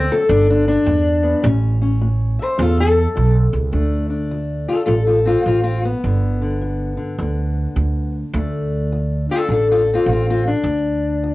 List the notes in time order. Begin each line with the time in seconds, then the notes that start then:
Already playing: E2 A3 C4
0.11 F#2 A4
0.29 G1 G2 D4
0.50 D4
0.68 D4
0.85 E2 G2
1.23 B3
1.42 A1 A2 C#4
1.82 C#4
2.02 A2
2.39 C5 E5
2.58 E2 A2 F4
2.62 A4
2.80 A4
3.16 B1 A2
3.53 C#2
3.72 D2 A3 D4
4.10 D4
4.31 D2
4.68 F4 A4
4.86 A1 D2 F4 A4
5.07 F4 A4
5.26 C4 F4
5.46 A1 D2 C4 F4
5.63 C4 F4
5.85 B3
6.04 G1 G2 D3
6.41 D3
6.61 G2
6.97 D3
7.19 D2 G2 D3
7.76 D2 G2
8.34 D2 A3 D4
8.92 D2
9.29 D4 F4 A4
9.49 A1 D2 F4
9.53 A4
9.71 F4 A4
9.93 C4 F4
10.06 A1 D2
10.11 C4 F4
10.30 C4 F4
10.47 D4
10.64 D2
11.23 D2